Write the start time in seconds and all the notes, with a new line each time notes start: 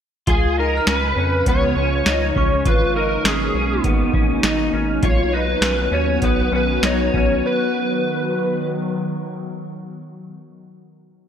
0.27 C#2 C#3 F3 G#3 F4 G#4, kick, closed hi-hat
0.57 D#4 A#4
0.77 F6
0.87 C#2 C#4 B4, snare, closed hi-hat
1.16 F2 C#4
1.46 C#2 B3 C#5, kick, closed hi-hat
1.76 C#2 C#4
2.06 C#2 D#4, snare, closed hi-hat
2.36 C#2 C#4 C#6, kick
2.65 G#1 B2 A#3 D#4 F4 B4, kick, closed hi-hat
2.95 D#4 A#4
3.24 G#1 C#4 G#4, snare, closed hi-hat
3.54 B1 C#4
3.84 G#1 B3, kick, closed hi-hat
4.13 G#1 C#4, kick
4.43 G#1 D#4, snare, closed hi-hat
4.73 G#1 C#4
5.02 B1 D#3 F#3 B3 F4 F#4 C#5, kick, closed hi-hat
5.32 D#4 B4
5.61 B1 C#4, snare, closed hi-hat
5.91 D#2 C#4 C#5
6.22 B1 B3 B4, kick, closed hi-hat
6.52 B1 C#4 B4
6.83 B1 D#4 C#5, snare, closed hi-hat
7.14 B1 C#4, kick
7.46 D#3 F#3 B4